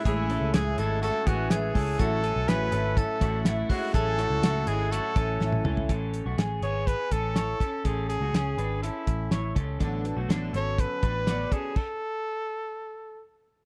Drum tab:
CC |----------------|----------------|----------------|----------------|
HH |x-x-x-x-x-x-x-o-|x-x-x-x-x-x-x-o-|x-x-x-x-x-x-----|x-x-x-x-x-x-x-x-|
SD |----o-------o---|----o-------o---|----o-------o---|----o-------o---|
T1 |----------------|----------------|-------------o--|----------------|
T2 |----------------|----------------|--------------o-|----------------|
FT |----------------|----------------|---------------o|----------------|
BD |o---------o---o-|o-------o-o---o-|o---------o-----|o-------o-o---o-|

CC |----------------|----------------|x---------------|
HH |x-x-x-x-x-x-x-x-|x-x-x-x-x-x-x-x-|----------------|
SD |----o-------o---|----o-o-----o---|----------------|
T1 |----------------|----------------|----------------|
T2 |----------------|----------------|----------------|
FT |----------------|----------------|----------------|
BD |o---------o---o-|o-------o-o---o-|o---------------|